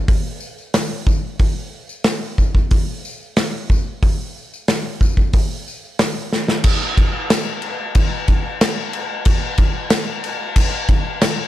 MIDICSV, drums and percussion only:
0, 0, Header, 1, 2, 480
1, 0, Start_track
1, 0, Tempo, 655738
1, 1017, Time_signature, 4, 2, 24, 8
1, 8400, End_track
2, 0, Start_track
2, 0, Title_t, "Drums"
2, 61, Note_on_c, 9, 36, 122
2, 62, Note_on_c, 9, 46, 64
2, 68, Note_on_c, 9, 54, 26
2, 134, Note_off_c, 9, 36, 0
2, 135, Note_off_c, 9, 46, 0
2, 141, Note_off_c, 9, 54, 0
2, 295, Note_on_c, 9, 54, 66
2, 368, Note_off_c, 9, 54, 0
2, 426, Note_on_c, 9, 54, 27
2, 499, Note_off_c, 9, 54, 0
2, 540, Note_on_c, 9, 46, 59
2, 543, Note_on_c, 9, 38, 111
2, 549, Note_on_c, 9, 54, 103
2, 614, Note_off_c, 9, 46, 0
2, 616, Note_off_c, 9, 38, 0
2, 622, Note_off_c, 9, 54, 0
2, 781, Note_on_c, 9, 36, 90
2, 794, Note_on_c, 9, 54, 76
2, 854, Note_off_c, 9, 36, 0
2, 867, Note_off_c, 9, 54, 0
2, 1020, Note_on_c, 9, 46, 56
2, 1022, Note_on_c, 9, 36, 102
2, 1038, Note_on_c, 9, 54, 23
2, 1093, Note_off_c, 9, 46, 0
2, 1095, Note_off_c, 9, 36, 0
2, 1112, Note_off_c, 9, 54, 0
2, 1385, Note_on_c, 9, 54, 70
2, 1458, Note_off_c, 9, 54, 0
2, 1494, Note_on_c, 9, 46, 51
2, 1497, Note_on_c, 9, 38, 109
2, 1513, Note_on_c, 9, 54, 100
2, 1568, Note_off_c, 9, 46, 0
2, 1570, Note_off_c, 9, 38, 0
2, 1586, Note_off_c, 9, 54, 0
2, 1640, Note_on_c, 9, 54, 29
2, 1713, Note_off_c, 9, 54, 0
2, 1744, Note_on_c, 9, 36, 72
2, 1748, Note_on_c, 9, 54, 71
2, 1817, Note_off_c, 9, 36, 0
2, 1821, Note_off_c, 9, 54, 0
2, 1864, Note_on_c, 9, 36, 77
2, 1883, Note_on_c, 9, 54, 26
2, 1937, Note_off_c, 9, 36, 0
2, 1956, Note_off_c, 9, 54, 0
2, 1982, Note_on_c, 9, 46, 58
2, 1986, Note_on_c, 9, 36, 111
2, 1999, Note_on_c, 9, 54, 28
2, 2055, Note_off_c, 9, 46, 0
2, 2059, Note_off_c, 9, 36, 0
2, 2072, Note_off_c, 9, 54, 0
2, 2232, Note_on_c, 9, 54, 74
2, 2305, Note_off_c, 9, 54, 0
2, 2361, Note_on_c, 9, 54, 26
2, 2434, Note_off_c, 9, 54, 0
2, 2463, Note_on_c, 9, 46, 56
2, 2466, Note_on_c, 9, 38, 109
2, 2480, Note_on_c, 9, 54, 96
2, 2537, Note_off_c, 9, 46, 0
2, 2539, Note_off_c, 9, 38, 0
2, 2553, Note_off_c, 9, 54, 0
2, 2707, Note_on_c, 9, 36, 88
2, 2720, Note_on_c, 9, 54, 64
2, 2780, Note_off_c, 9, 36, 0
2, 2794, Note_off_c, 9, 54, 0
2, 2947, Note_on_c, 9, 36, 102
2, 2950, Note_on_c, 9, 46, 53
2, 2973, Note_on_c, 9, 54, 23
2, 3020, Note_off_c, 9, 36, 0
2, 3023, Note_off_c, 9, 46, 0
2, 3046, Note_off_c, 9, 54, 0
2, 3083, Note_on_c, 9, 54, 26
2, 3156, Note_off_c, 9, 54, 0
2, 3207, Note_on_c, 9, 54, 23
2, 3280, Note_off_c, 9, 54, 0
2, 3320, Note_on_c, 9, 54, 66
2, 3393, Note_off_c, 9, 54, 0
2, 3426, Note_on_c, 9, 46, 55
2, 3428, Note_on_c, 9, 38, 109
2, 3440, Note_on_c, 9, 54, 90
2, 3499, Note_off_c, 9, 46, 0
2, 3501, Note_off_c, 9, 38, 0
2, 3514, Note_off_c, 9, 54, 0
2, 3666, Note_on_c, 9, 36, 80
2, 3679, Note_on_c, 9, 54, 71
2, 3739, Note_off_c, 9, 36, 0
2, 3752, Note_off_c, 9, 54, 0
2, 3786, Note_on_c, 9, 36, 79
2, 3805, Note_on_c, 9, 54, 25
2, 3859, Note_off_c, 9, 36, 0
2, 3879, Note_off_c, 9, 54, 0
2, 3904, Note_on_c, 9, 46, 65
2, 3906, Note_on_c, 9, 36, 108
2, 3918, Note_on_c, 9, 54, 24
2, 3977, Note_off_c, 9, 46, 0
2, 3979, Note_off_c, 9, 36, 0
2, 3991, Note_off_c, 9, 54, 0
2, 4155, Note_on_c, 9, 54, 64
2, 4229, Note_off_c, 9, 54, 0
2, 4281, Note_on_c, 9, 54, 24
2, 4355, Note_off_c, 9, 54, 0
2, 4385, Note_on_c, 9, 46, 56
2, 4387, Note_on_c, 9, 38, 116
2, 4402, Note_on_c, 9, 54, 85
2, 4458, Note_off_c, 9, 46, 0
2, 4460, Note_off_c, 9, 38, 0
2, 4475, Note_off_c, 9, 54, 0
2, 4524, Note_on_c, 9, 54, 20
2, 4598, Note_off_c, 9, 54, 0
2, 4630, Note_on_c, 9, 38, 62
2, 4638, Note_on_c, 9, 54, 63
2, 4703, Note_off_c, 9, 38, 0
2, 4711, Note_off_c, 9, 54, 0
2, 4747, Note_on_c, 9, 38, 81
2, 4766, Note_on_c, 9, 54, 23
2, 4820, Note_off_c, 9, 38, 0
2, 4839, Note_off_c, 9, 54, 0
2, 4858, Note_on_c, 9, 49, 115
2, 4858, Note_on_c, 9, 57, 86
2, 4863, Note_on_c, 9, 36, 117
2, 4932, Note_off_c, 9, 49, 0
2, 4932, Note_off_c, 9, 57, 0
2, 4937, Note_off_c, 9, 36, 0
2, 5106, Note_on_c, 9, 36, 93
2, 5107, Note_on_c, 9, 57, 66
2, 5179, Note_off_c, 9, 36, 0
2, 5180, Note_off_c, 9, 57, 0
2, 5344, Note_on_c, 9, 57, 78
2, 5346, Note_on_c, 9, 38, 114
2, 5358, Note_on_c, 9, 54, 101
2, 5417, Note_off_c, 9, 57, 0
2, 5420, Note_off_c, 9, 38, 0
2, 5431, Note_off_c, 9, 54, 0
2, 5576, Note_on_c, 9, 57, 53
2, 5650, Note_off_c, 9, 57, 0
2, 5818, Note_on_c, 9, 57, 89
2, 5822, Note_on_c, 9, 36, 96
2, 5891, Note_off_c, 9, 57, 0
2, 5896, Note_off_c, 9, 36, 0
2, 6060, Note_on_c, 9, 57, 56
2, 6063, Note_on_c, 9, 36, 76
2, 6133, Note_off_c, 9, 57, 0
2, 6136, Note_off_c, 9, 36, 0
2, 6302, Note_on_c, 9, 57, 86
2, 6305, Note_on_c, 9, 38, 120
2, 6309, Note_on_c, 9, 54, 113
2, 6376, Note_off_c, 9, 57, 0
2, 6378, Note_off_c, 9, 38, 0
2, 6382, Note_off_c, 9, 54, 0
2, 6539, Note_on_c, 9, 57, 62
2, 6612, Note_off_c, 9, 57, 0
2, 6773, Note_on_c, 9, 57, 86
2, 6778, Note_on_c, 9, 36, 116
2, 6846, Note_off_c, 9, 57, 0
2, 6851, Note_off_c, 9, 36, 0
2, 7010, Note_on_c, 9, 57, 68
2, 7015, Note_on_c, 9, 36, 93
2, 7083, Note_off_c, 9, 57, 0
2, 7089, Note_off_c, 9, 36, 0
2, 7248, Note_on_c, 9, 57, 78
2, 7251, Note_on_c, 9, 38, 113
2, 7259, Note_on_c, 9, 54, 110
2, 7322, Note_off_c, 9, 57, 0
2, 7324, Note_off_c, 9, 38, 0
2, 7332, Note_off_c, 9, 54, 0
2, 7493, Note_on_c, 9, 57, 58
2, 7567, Note_off_c, 9, 57, 0
2, 7729, Note_on_c, 9, 57, 99
2, 7731, Note_on_c, 9, 36, 88
2, 7802, Note_off_c, 9, 57, 0
2, 7804, Note_off_c, 9, 36, 0
2, 7968, Note_on_c, 9, 57, 59
2, 7970, Note_on_c, 9, 36, 85
2, 8041, Note_off_c, 9, 57, 0
2, 8043, Note_off_c, 9, 36, 0
2, 8209, Note_on_c, 9, 57, 91
2, 8211, Note_on_c, 9, 38, 107
2, 8220, Note_on_c, 9, 54, 94
2, 8282, Note_off_c, 9, 57, 0
2, 8284, Note_off_c, 9, 38, 0
2, 8293, Note_off_c, 9, 54, 0
2, 8400, End_track
0, 0, End_of_file